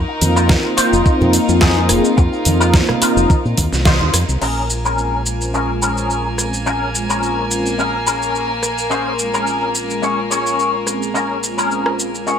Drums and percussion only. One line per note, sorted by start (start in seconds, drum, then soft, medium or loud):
0.21 open hi-hat loud
0.21 high conga medium
0.21 shaker medium
0.21 maracas medium
0.37 maracas soft
0.37 shaker soft
0.49 kick loud
0.49 snare loud
0.49 maracas medium
0.49 shaker soft
0.77 open hi-hat loud
0.77 maracas loud
0.77 shaker medium
0.93 maracas soft
0.93 shaker soft
1.06 kick loud
1.06 maracas medium
1.06 shaker soft
1.21 low conga medium
1.21 maracas soft
1.33 open hi-hat loud
1.33 maracas loud
1.33 shaker medium
1.49 high bongo medium
1.49 shaker soft
1.49 maracas soft
1.61 kick loud
1.61 snare loud
1.61 shaker soft
1.61 maracas medium
1.77 high bongo medium
1.77 maracas soft
1.89 cross-stick medium
1.89 open hi-hat loud
1.89 shaker medium
1.89 maracas medium
2.05 shaker soft
2.05 maracas soft
2.18 kick loud
2.18 shaker soft
2.18 maracas soft
2.33 maracas soft
2.45 open hi-hat loud
2.45 high conga medium
2.45 shaker medium
2.45 maracas medium
2.61 shaker soft
2.61 maracas soft
2.74 kick loud
2.74 snare loud
2.74 high bongo medium
2.74 shaker soft
2.74 maracas medium
2.89 cross-stick medium
2.89 low conga medium
2.89 maracas soft
3.02 open hi-hat loud
3.02 shaker medium
3.02 maracas medium
3.17 maracas soft
3.17 shaker soft
3.30 kick loud
3.30 high conga medium
3.30 maracas medium
3.30 shaker soft
3.45 maracas soft
3.57 kick medium
3.57 open hi-hat loud
3.57 high bongo medium
3.57 shaker medium
3.57 maracas medium
3.73 snare soft
3.73 maracas soft
3.73 shaker soft
3.85 kick loud
3.85 snare loud
3.85 high conga medium
3.85 shaker soft
3.85 maracas medium
4.01 high bongo medium
4.01 maracas soft
4.14 cross-stick medium
4.14 open hi-hat loud
4.14 shaker medium
4.14 maracas medium
4.29 maracas soft
4.29 shaker soft
4.42 crash medium
4.42 shaker soft
4.70 shaker medium
4.85 shaker soft
4.98 shaker soft
5.26 shaker medium
5.41 shaker soft
5.54 shaker soft
5.82 shaker medium
5.97 shaker soft
6.10 shaker soft
6.38 cross-stick medium
6.38 shaker medium
6.54 shaker soft
6.67 shaker soft
6.95 shaker medium
7.10 shaker soft
7.23 shaker soft
7.51 shaker medium
7.66 shaker soft
7.79 shaker soft
8.07 shaker medium
8.22 shaker soft
8.35 shaker soft
8.63 cross-stick medium
8.63 shaker medium
8.78 shaker soft
8.91 shaker soft
9.19 shaker medium
9.34 shaker soft
9.47 shaker soft
9.75 shaker medium
9.90 shaker soft
10.03 shaker soft
10.31 shaker medium
10.47 shaker soft
10.59 shaker soft
10.87 cross-stick medium
10.87 shaker medium
11.02 shaker soft
11.15 shaker soft
11.43 shaker medium
11.58 shaker soft
11.71 shaker soft
11.86 cross-stick medium
11.99 shaker medium
12.15 shaker soft
12.27 shaker soft